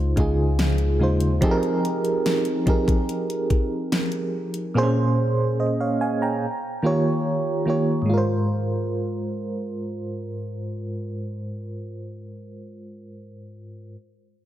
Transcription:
Already playing: C#2 C#3 G#3 D#4 F4 C5
0.16 C#2 C#3 G#3 D#4 F4 G#4, kick, closed hi-hat
0.59 snare, closed hi-hat
0.78 closed hi-hat
1.00 D#2 C#3 G#3 D#4 F4 C5
1.20 closed hi-hat
1.41 F3 C4 D#4 G4 G#4 A4, kick, closed hi-hat
1.51 A#4
1.63 closed hi-hat
1.85 closed hi-hat
2.05 closed hi-hat
2.26 snare, closed hi-hat
2.45 closed hi-hat
2.66 F3 C4 D#4 G4 G#4 A#4, kick, closed hi-hat
2.88 kick, closed hi-hat
3.09 closed hi-hat
3.30 closed hi-hat
3.50 kick, closed hi-hat
3.92 snare, closed hi-hat
4.12 closed hi-hat
4.54 closed hi-hat
4.74 A#2 A#3 C4 G#4 C5
4.83 C#4
5.60 C5 D#5
5.80 C#5 F5
6.01 F5 G#5
6.22 G5 A#5
6.82 D#3 A#3 F4 G4 C#5
7.66 D#3 A#3 F4 G4
7.70 C#5
8.02 G#2 G#3
8.10 F4
8.14 A#4 C5

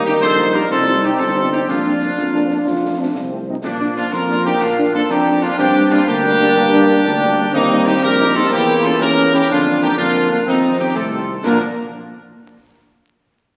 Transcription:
Already playing: D#2 G3 A#3 D#4
0.05 G3 A#3 D#4 G4, snare
0.22 A#1 A4 C5, concert bass drum, snare
0.38 G3 A#3 D#4, snare
0.54 G3 A#3 D#4 G4 A#4, snare
0.70 C2 C4 F4 A4, concert bass drum, snare
0.88 G3 C4 D#4
1.02 G3 C4 D#4 G4
1.18 G1 F4 A4, concert bass drum, snare
1.36 G3 C4 D#4
1.52 G3 C4 D#4 G4, snare
1.68 F2 A#3 D4 F4, concert bass drum, snare
1.85 F3 A#3 D4
2.00 F3 A#3 D4, snare
2.18 F2 A#3, concert bass drum, snare
2.33 F3 A#3 D4, snare
2.49 F3 A#3 D4, snare
2.66 F2 F4, concert bass drum, snare
2.83 F3 A3 C4
2.98 F3 A3 C4 D4
3.15 C2 C4, concert bass drum, snare
3.32 F3 A3 C4
3.47 F3 A3 C4 D#4
3.63 A#2 F3 A#3 D4, concert bass drum, snare, crash
3.80 F3 A#3 D4
3.96 F3 A#3 D4 F4, snare
4.12 F2 A#3 F4 A#4, concert bass drum, snare
4.29 F3 A#3 D4, snare
4.45 F3 A#3 D4 D#4 G4, snare
4.61 A#2 D4 F4, concert bass drum, snare
4.78 F3 A#3 D4
4.93 F3 A#3 D4 F4 A4
5.09 F2 D4 D#4 G4, concert bass drum, snare
5.27 F3 A#3 D4
5.41 F3 A#3 D4 F4, snare
5.58 G2 G3 A#3 C4 D4 G4, concert bass drum, snare
5.75 G3 A#3 D4
5.91 G3 A#3 D4 F4, snare
6.06 D2 A#3 D4 G4, concert bass drum, snare
6.24 G3 A#3 D4, snare
6.40 G3 A#3 D4, snare
6.56 G2, concert bass drum, snare
6.73 G3 A#3 D4
6.89 G3 A#3 D4
7.05 D2 D4, concert bass drum, snare
7.21 G3 A#3 D4
7.38 G3 A#3 D4, snare
7.52 D#2 G3 A#3 C4 D#4, concert bass drum, snare, crash
7.71 G3 A#3 D#4
7.86 G3 A#3 D#4 G4, snare
8.03 A#1 G4 A#4, concert bass drum, snare
8.19 G3 A#3 D#4, snare
8.35 G3 A#3 D#4 F4 A4, snare
8.51 E2 E3 A#3 E4 G4, concert bass drum, snare
8.68 E3 A#3 C#4
8.83 E3 A#3 C#4 F4 A4
9.00 E2 C#4 G4 A#4, concert bass drum, snare
9.17 E3 A#3 C#4
9.33 E3 A#3 C#4 E4 G4, snare
9.49 F2 D3 A#3 D4 F4, concert bass drum, snare
9.66 D3 F3 A#3
9.81 D3 F3 A#3 D#4 G4, snare
9.97 F2 A#3 D4 F4, concert bass drum, snare
10.15 D3 F3 A#3, snare
10.30 D3 F3 A#3 D4 F4, snare
10.45 F2 D#3 C4 D#4, concert bass drum, snare
10.64 D#3 F3 C4
10.79 D#3 F3 C4 D#4 G4
10.94 C2 A3 F4 A4, concert bass drum, snare
11.12 D#3 F3 C4
11.29 D#3 F3 C4
11.43 A#2 D3 F3 A#3 D4 A#4, concert bass drum, snare, crash

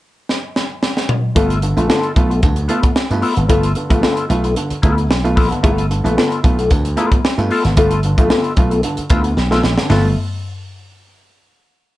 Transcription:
0.29 snare
0.56 snare
0.83 snare
0.97 snare
1.09 mid tom
1.35 G1 A3 B3 F4 A4, kick, closed hi-hat
1.50 closed hi-hat
1.62 G2 D3, muted clean electric guitar stroke, closed hi-hat
1.77 A#1 A3 B3 F4 A4, closed hi-hat
1.89 G2 D3 B3 F4 A4, snare
2.03 closed hi-hat
2.16 B1 A3 B3 F4, muted clean electric guitar stroke, kick, closed hi-hat
2.30 B3 F4 A4, closed hi-hat
2.42 D2 G2 D3, muted clean electric guitar stroke, kick, closed hi-hat
2.56 muted clean electric guitar stroke, closed hi-hat
2.68 A3 B3 F4 A4, closed hi-hat
2.83 B3 F4, muted clean electric guitar stroke, kick, closed hi-hat
2.95 muted clean electric guitar stroke, snare
3.10 G2 A3 B3 F4, muted clean electric guitar stroke, closed hi-hat
3.22 B3 F4 A4, open hi-hat
3.36 G#1 G2 D3, muted clean electric guitar stroke, closed hi-hat
3.48 G1 A3 B3 F4 A4, kick, closed hi-hat
3.63 closed hi-hat
3.75 G2 D3, muted clean electric guitar stroke, closed hi-hat
3.90 A#1 A3 B3 F4 A4, kick, closed hi-hat
4.02 G2 D3 B3 F4 A4, snare
4.17 closed hi-hat
4.29 B1 A3 B3 F4, muted clean electric guitar stroke, closed hi-hat
4.44 B3 F4 A4, closed hi-hat
4.56 G2 D3, muted clean electric guitar stroke, closed hi-hat
4.70 muted clean electric guitar stroke, muted slap bass stroke, closed hi-hat
4.82 D2 A3 B3 F4 A4, kick, closed hi-hat
4.97 B3 F4, muted clean electric guitar stroke, closed hi-hat
5.09 B1, muted clean electric guitar stroke, snare
5.24 A3 B3 F4, muted clean electric guitar stroke, closed hi-hat
5.36 A#1 B3 F4 A4, kick, open hi-hat
5.51 G2 D3, muted clean electric guitar stroke, closed hi-hat
5.63 G1 A3 B3 F4 A4, kick, closed hi-hat
5.78 closed hi-hat
5.90 G2 D3, muted clean electric guitar stroke, closed hi-hat
6.04 A#1 A3 B3 F4 A4, closed hi-hat
6.17 G2 D3 B3 F4 A4, snare
6.32 closed hi-hat
6.44 B1 A3 B3 F4, muted clean electric guitar stroke, kick, closed hi-hat
6.58 B3 F4 A4, closed hi-hat
6.70 D2 G2 D3, muted clean electric guitar stroke, kick, closed hi-hat
6.85 muted clean electric guitar stroke, closed hi-hat
6.97 A3 B3 F4 A4, closed hi-hat
7.11 B3 F4, muted clean electric guitar stroke, kick, closed hi-hat
7.25 muted clean electric guitar stroke, snare
7.38 G2 A3 B3 F4, muted clean electric guitar stroke, closed hi-hat
7.50 B3 F4 A4, open hi-hat
7.65 G#1 G2 D3, muted clean electric guitar stroke, snare, closed hi-hat
7.77 G1 A3 B3 F4 A4, kick, closed hi-hat
7.91 closed hi-hat
8.03 G2 D3, muted clean electric guitar stroke, closed hi-hat
8.18 A#1 A3 B3 F4 A4, kick, closed hi-hat
8.30 G2 D3 B3 F4 A4, snare
8.44 closed hi-hat
8.57 B1 A3 B3 F4, muted clean electric guitar stroke, kick, closed hi-hat
8.71 B3 F4 A4, closed hi-hat
8.82 G2 D3, muted clean electric guitar stroke, closed hi-hat
8.96 muted clean electric guitar stroke, muted slap bass stroke, closed hi-hat
9.10 D2 A3 B3 F4 A4, kick, closed hi-hat
9.24 B3 F4, muted clean electric guitar stroke, closed hi-hat
9.37 B1, muted clean electric guitar stroke, snare
9.51 A3 B3 F4 A4, snare
9.63 A#1, snare
9.77 G2 D3, muted clean electric guitar stroke, snare
9.90 G1 A3 B3 F4 A4, snare, floor tom, open hi-hat

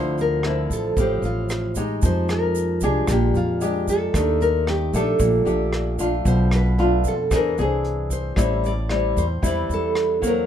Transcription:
Already playing: D2 D3 F3 C4 E4 C5
0.18 A#4, closed hi-hat, shaker
0.43 F3 C4 E4, cross-stick, closed hi-hat
0.70 A1 A4, kick, closed hi-hat, shaker
0.97 A1 A2 F3 C4 G4, kick, closed hi-hat, shaker
1.22 A1 F4, closed hi-hat, shaker
1.49 cross-stick, closed hi-hat, shaker
1.75 G#3 D#4 G4, kick, closed hi-hat, shaker
2.02 F2 F3 C5, kick, closed hi-hat, shaker
2.29 A#4, cross-stick, closed hi-hat, shaker
2.55 closed hi-hat, shaker
2.81 C2 G#3 D4 G4 G#4, kick, closed hi-hat, shaker
3.07 A#1 A#2, kick, cross-stick, closed hi-hat, shaker
3.12 G4
3.34 F2 F4, closed hi-hat, shaker
3.61 G#3 D4 G4, closed hi-hat, shaker
3.88 A4, kick, closed hi-hat, shaker
4.14 D#2 D#3 A3 D4 G4, kick, cross-stick, closed hi-hat, shaker
4.40 A#4, closed hi-hat, shaker
4.67 G4, cross-stick, closed hi-hat
4.93 A#1 A3 D4 G4 A4, kick, closed hi-hat, shaker
5.19 A#1 A#2, kick, closed hi-hat, shaker
5.45 A#1 A3 D4 G4, closed hi-hat, shaker
5.73 cross-stick, closed hi-hat
5.99 A3 D4 F4, kick, closed hi-hat, shaker
6.25 B1 B2 C5, kick, closed hi-hat, shaker
6.51 B4, cross-stick, closed hi-hat, shaker
6.78 A3 D4 F4, closed hi-hat
7.04 F2 A4, kick, closed hi-hat, shaker
7.31 E2 E3 C4 D4 G#4, kick, cross-stick, closed hi-hat, shaker
7.35 A#4
7.57 C2 C4 D4 G#4, closed hi-hat, shaker
7.84 closed hi-hat
8.10 C5, kick, closed hi-hat, shaker
8.36 A1 A2 G3 C4 E4, kick, cross-stick, closed hi-hat, shaker
8.63 D5, closed hi-hat, shaker
8.89 G3 C4 E4, cross-stick, closed hi-hat
9.16 E2 C5, kick, closed hi-hat, shaker
9.42 E2 E3 G3 C4 E4, kick, closed hi-hat, shaker
9.46 D5
9.69 E2, closed hi-hat, shaker
9.74 A4
9.95 cross-stick, closed hi-hat
10.22 F#3 A#3 C4, kick, closed hi-hat, shaker
10.27 A#4

